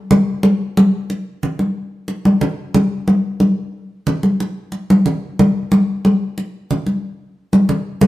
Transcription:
0.11 muted conga soft
0.11 high conga medium
0.11 low conga medium
0.43 high conga medium
0.77 high conga medium
1.10 muted conga soft
1.43 low conga medium
1.59 high conga soft
2.08 muted conga soft
2.25 high conga medium
2.41 muted conga soft
2.41 low conga medium
2.74 muted conga soft
2.74 high conga medium
2.74 low conga medium
3.08 high conga medium
3.40 high conga medium
4.07 muted conga soft
4.07 low conga medium
4.23 high conga medium
4.40 muted conga soft
4.72 muted conga soft
4.90 high conga medium
5.06 low conga medium
5.39 muted conga soft
5.39 high conga medium
5.39 low conga medium
5.72 muted conga soft
5.72 high conga medium
6.05 high conga medium
6.38 muted conga soft
6.71 muted conga soft
6.71 low conga medium
6.86 high conga soft
7.53 high conga medium
7.69 low conga medium
8.01 muted conga soft
8.01 high conga medium
8.01 low conga medium

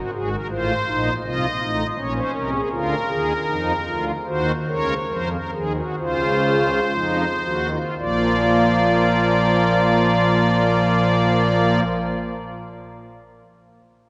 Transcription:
0.00 0.11 F#4 medium
0.12 0.36 G#1 medium
0.12 0.36 G#2 medium
0.12 0.36 F#4 medium
0.12 0.29 G#4 medium
0.31 0.47 A#4 medium
0.50 0.73 A1 medium
0.50 0.73 A2 medium
0.50 0.73 F4 loud
0.50 1.13 C5 medium
0.87 1.10 A#1 medium
0.87 1.10 A#2 medium
0.87 1.10 D#4 medium
1.23 1.46 C2 medium
1.23 1.46 C3 medium
1.23 1.46 F4 loud
1.23 1.87 D#5 medium
1.60 1.83 A1 medium
1.60 1.83 A2 medium
1.60 1.83 D#4 medium
1.97 2.20 A#1 medium
1.97 2.20 A#2 medium
1.97 2.61 C#4 loud
1.97 2.13 C#5 medium
2.15 2.31 C5 medium
2.34 2.57 C2 medium
2.34 2.57 C3 medium
2.34 2.50 A#4 medium
2.52 2.68 G#4 medium
2.70 2.94 D2 medium
2.70 2.94 D3 medium
2.70 2.94 F4 loud
2.70 4.05 A#4 medium
3.08 3.32 D#2 medium
3.08 3.32 D#3 medium
3.08 3.32 G#4 medium
3.47 3.72 F2 medium
3.47 3.72 F3 medium
3.47 3.72 D#4 loud
3.86 4.12 D2 medium
3.86 4.12 D3 medium
3.86 4.11 F4 medium
4.26 4.52 D#2 medium
4.26 4.52 D#3 medium
4.26 4.52 F#4 loud
4.26 4.52 C5 medium
4.67 4.94 C#2 medium
4.67 4.94 C#3 medium
4.67 4.94 A#4 loud
4.67 4.94 C#5 medium
5.10 5.37 F2 medium
5.10 5.37 F3 loud
5.10 5.30 A#4 medium
5.10 5.28 C5 medium
5.32 5.50 A#4 medium
5.53 5.81 D#2 medium
5.53 5.81 D#3 medium
5.53 5.72 G#4 medium
5.76 5.95 F#4 medium
5.98 6.80 C#2 medium
5.98 6.80 C#3 medium
5.98 6.80 F4 medium
5.98 7.70 C5 medium
6.93 7.25 F2 medium
6.93 7.25 F3 medium
6.93 7.25 D#4 medium
7.45 7.78 D#2 medium
7.45 7.78 D#3 medium
7.45 7.67 F#4 medium
7.71 7.94 F4 medium
7.98 11.80 A#1 medium
7.98 11.80 A#2 medium
7.98 11.83 F3 medium
7.98 11.83 A#3 medium
7.98 11.80 F4 medium
7.98 11.80 D5 medium

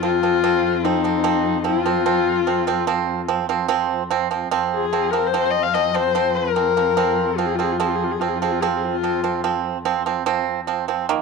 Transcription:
0.00 4.51 F2 medium
0.00 0.19 F3 medium
0.00 0.19 C4 medium
0.00 0.85 F4 loud
0.23 0.39 F3 medium
0.23 0.40 C4 medium
0.44 0.76 F3 medium
0.44 0.76 C4 medium
0.84 1.01 F3 medium
0.84 1.01 C4 medium
0.84 1.68 D#4 loud
1.04 1.21 F3 medium
1.04 1.21 C4 medium
1.24 1.57 F3 medium
1.24 1.57 C4 loud
1.64 1.81 F3 medium
1.64 1.81 C4 medium
1.64 3.29 F4 loud
1.86 2.02 F3 medium
1.86 2.02 C4 medium
2.06 2.39 F3 medium
2.06 2.39 C4 medium
2.47 2.64 F3 medium
2.47 2.64 C4 medium
2.67 2.84 F3 medium
2.67 2.84 C4 medium
2.87 3.20 F3 medium
2.87 3.21 C4 medium
3.28 3.45 F3 medium
3.28 3.45 C4 medium
3.49 3.66 F3 medium
3.49 3.66 C4 medium
3.68 4.02 F3 loud
3.68 4.02 C4 loud
4.11 4.27 F3 medium
4.11 4.27 C4 medium
4.31 4.47 F3 medium
4.31 4.47 C4 medium
4.51 11.18 F2 medium
4.51 4.84 F3 medium
4.51 4.84 C4 loud
4.75 5.12 G#4 medium
4.93 5.09 F3 medium
4.93 5.09 C4 medium
5.10 5.29 F3 medium
5.10 5.30 C4 medium
5.10 5.28 A#4 medium
5.27 5.38 C5 loud
5.34 5.67 F3 medium
5.34 5.67 C4 medium
5.39 5.52 C5 medium
5.51 5.64 D#5 medium
5.62 5.75 F5 medium
5.74 5.91 F3 medium
5.74 5.91 C4 medium
5.74 5.96 D#5 loud
5.94 6.11 F3 medium
5.94 6.11 C4 medium
5.94 6.37 C5 loud
6.15 6.48 F3 medium
6.15 6.48 C4 medium
6.35 7.39 A#4 medium
6.56 6.73 F3 medium
6.56 6.73 C4 medium
6.77 6.93 F3 medium
6.77 6.93 C4 medium
6.97 7.30 F3 loud
6.97 7.30 C4 loud
7.38 7.55 F3 medium
7.38 7.55 C4 medium
7.38 7.48 F4 medium
7.46 7.57 G#4 medium
7.55 7.75 F3 medium
7.55 7.64 F4 medium
7.59 7.76 C4 medium
7.59 7.74 G#4 medium
7.72 7.82 F4 medium
7.80 8.13 F3 medium
7.80 8.13 C4 loud
7.80 7.90 G#4 medium
7.89 7.97 F4 medium
7.95 8.05 G#4 medium
8.04 8.13 F4 medium
8.11 8.21 G#4 medium
8.20 8.37 F3 medium
8.20 8.37 C4 medium
8.20 8.29 F4 medium
8.28 8.37 G#4 medium
8.36 8.45 F4 medium
8.42 8.58 F3 medium
8.42 8.58 C4 medium
8.42 8.54 G#4 medium
8.52 8.62 F4 medium
8.61 8.95 F3 medium
8.61 8.95 C4 medium
8.61 8.69 G#4 medium
8.67 8.78 F4 medium
8.77 8.87 G#4 medium
8.85 9.44 F4 medium
9.03 9.20 F3 medium
9.03 9.20 C4 medium
9.24 9.40 F3 medium
9.24 9.40 C4 medium
9.44 9.77 F3 medium
9.44 9.77 C4 medium
9.85 10.02 F3 medium
9.85 10.02 C4 medium
10.06 10.23 F3 medium
10.06 10.23 C4 medium
10.26 10.59 F3 loud
10.26 10.60 C4 loud
10.67 10.84 F3 medium
10.67 10.84 C4 medium
10.88 11.05 F3 medium
10.88 11.05 C4 medium
11.09 11.22 D#3 loud
11.09 11.22 A#3 loud

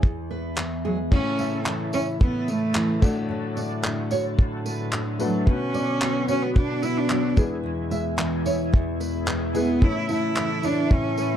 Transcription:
0.00 1.17 E2 medium
0.00 0.57 E3 medium
0.00 0.84 G#3 medium
0.00 1.18 G#4 medium
0.00 kick loud
0.31 1.18 B3 medium
0.31 0.56 B4 medium
0.57 1.17 E3 medium
0.57 clap loud
0.85 0.97 F#3 medium
0.85 1.17 G#3 medium
0.85 0.98 G#4 medium
1.11 2.19 A2 medium
1.11 3.01 C#3 medium
1.11 3.01 E3 medium
1.11 2.11 A3 medium
1.11 5.43 A3 medium
1.11 1.62 C#4 loud
1.11 2.12 C#4 medium
1.11 2.12 E4 medium
1.11 3.01 E4 medium
1.11 3.01 A4 medium
1.11 2.12 C#5 medium
1.11 kick loud
1.11 crash loud
1.39 3.56 A3 medium
1.39 1.52 E5 medium
1.39 tambourine medium
1.66 2.74 E3 medium
1.66 clap loud
1.93 2.06 C#4 loud
1.93 3.08 E4 medium
1.93 2.06 C#5 medium
1.93 tambourine medium
2.20 3.01 A2 medium
2.20 2.51 B3 medium
2.20 kick loud
2.48 3.03 A3 medium
2.48 2.74 B4 medium
2.48 tambourine medium
2.75 3.08 E3 medium
2.75 clap loud
3.01 3.27 A2 medium
3.01 5.45 A2 medium
3.01 7.33 D3 medium
3.01 7.33 F#3 medium
3.01 4.01 A3 medium
3.01 4.01 D4 medium
3.01 4.02 F#4 medium
3.01 7.33 F#4 medium
3.01 3.15 A4 medium
3.01 5.45 A4 medium
3.01 4.02 D5 medium
3.01 kick loud
3.01 tambourine medium
3.01 crash medium
3.29 4.37 A2 medium
3.56 5.19 A3 medium
3.56 3.70 D5 medium
3.56 tambourine medium
3.84 4.92 D3 medium
3.84 clap loud
4.11 5.52 F#4 medium
4.11 4.24 C#5 medium
4.11 tambourine medium
4.38 5.46 A2 medium
4.38 kick loud
4.66 4.91 B4 medium
4.66 tambourine medium
4.93 5.53 D3 medium
4.93 clap loud
5.19 5.50 F#3 medium
5.19 5.44 A3 medium
5.19 5.52 A3 medium
5.19 5.44 D4 medium
5.19 5.45 F#4 medium
5.19 5.33 A4 medium
5.19 5.45 B4 medium
5.19 tambourine medium
5.46 6.54 B2 medium
5.46 6.46 B3 medium
5.46 7.35 B3 medium
5.46 6.29 C#4 loud
5.46 6.47 F#4 medium
5.46 7.35 B4 medium
5.46 6.47 B4 medium
5.46 kick loud
5.74 7.90 B3 medium
5.74 5.87 D5 medium
5.74 tambourine medium
6.01 7.08 F#3 medium
6.01 clap loud
6.28 6.44 C#4 loud
6.28 7.42 F#4 medium
6.28 6.41 C#5 medium
6.28 tambourine medium
6.43 6.55 B3 medium
6.55 7.42 B2 medium
6.55 6.84 D4 loud
6.55 kick loud
6.83 6.99 E4 loud
6.83 7.09 B4 medium
6.83 tambourine medium
6.97 7.38 D4 loud
7.10 7.42 F#3 medium
7.10 clap loud
7.36 7.62 E2 medium
7.36 9.80 B2 medium
7.36 11.37 E3 medium
7.36 8.36 G#3 medium
7.36 9.80 G#3 medium
7.36 8.37 B3 medium
7.36 11.37 E4 medium
7.36 8.37 E4 medium
7.36 7.50 G#4 medium
7.36 9.80 G#4 medium
7.36 8.37 B4 medium
7.36 kick loud
7.36 tambourine medium
7.63 8.71 E2 medium
7.90 9.54 G#3 medium
7.90 8.04 E5 medium
7.90 tambourine medium
8.18 9.27 E3 medium
8.18 clap loud
8.45 9.87 E4 medium
8.45 8.59 C#5 medium
8.45 tambourine medium
8.73 9.81 E2 medium
8.73 kick loud
9.00 9.26 B4 medium
9.00 tambourine medium
9.27 9.87 E3 medium
9.27 clap loud
9.54 9.79 G#3 medium
9.54 9.87 G#3 medium
9.54 9.80 B3 medium
9.54 9.85 B3 medium
9.54 9.80 E4 medium
9.54 9.67 G#4 medium
9.54 9.80 B4 medium
9.54 tambourine medium
9.82 10.90 A2 medium
9.82 11.37 C#3 medium
9.82 10.81 A3 medium
9.82 11.37 A3 medium
9.82 10.81 C#4 medium
9.82 10.82 E4 medium
9.82 10.10 E4 loud
9.82 11.37 A4 medium
9.82 10.82 C#5 medium
9.82 kick loud
10.09 11.37 A3 medium
10.09 10.66 E4 loud
10.09 10.22 E5 medium
10.09 tambourine medium
10.36 11.37 E3 medium
10.36 clap loud
10.63 10.94 D4 loud
10.63 11.37 E4 medium
10.63 10.76 C#5 medium
10.63 tambourine medium
10.91 11.37 A2 medium
10.91 11.36 C#4 loud
10.91 kick loud
11.18 11.37 B4 medium
11.18 tambourine medium

